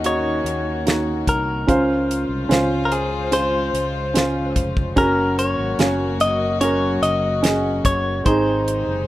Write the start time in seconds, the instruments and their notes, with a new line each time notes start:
Already playing: fingered electric bass D#2, string section D#3 A#3 C#4 F#4, felt piano D#3 D#4 F#4 C#5
0.04 felt piano D#4 F#4 D#5, clean electric guitar C#5, closed hi-hat
0.44 fingered electric bass D#2, closed hi-hat
0.85 felt piano D#4 F#4 C#5, snare, closed hi-hat
1.27 fingered electric bass C2, clean electric guitar A#4, kick, closed hi-hat
1.67 fingered electric bass C#2, felt piano C#3 C#4 F4 C5, string section C#3 G#3 F4 C5, kick, closed hi-hat
2.11 closed hi-hat
2.29 fingered electric bass C2
2.49 fingered electric bass C#2, felt piano C#4 F4 C5, snare, closed hi-hat
2.85 clean electric guitar A#4
2.92 clean electric guitar G#4, closed hi-hat
3.31 felt piano C#4 F4 C5, clean electric guitar C5, closed hi-hat
3.73 fingered electric bass C#2, closed hi-hat
4.14 felt piano C#4 F4 C5, snare, closed hi-hat
4.56 fingered electric bass F1, kick, closed hi-hat
4.77 kick
4.96 fingered electric bass F#1, string section F#3 A#3 F#4, felt piano C#4 F#4 A#4, clean electric guitar A#4, kick, closed hi-hat
5.39 clean electric guitar C#5, closed hi-hat
5.59 fingered electric bass G#1
5.78 fingered electric bass F#1, felt piano C#4 F#4 C#5, snare, closed hi-hat
6.20 clean electric guitar D#5, closed hi-hat
6.61 felt piano C#4 F#4 A#4, clean electric guitar C#5, closed hi-hat
7.02 fingered electric bass F#1, clean electric guitar D#5, closed hi-hat
7.42 felt piano C#4 F#4 G#4, snare, closed hi-hat
7.85 fingered electric bass F#1, clean electric guitar C#5, kick, closed hi-hat
8.25 fingered electric bass G#1, felt piano G#2 C4 D#4 G#4, string section C3 D#3 G#3 D#4, clean electric guitar C5, kick, closed hi-hat
8.68 closed hi-hat
8.87 fingered electric bass F#1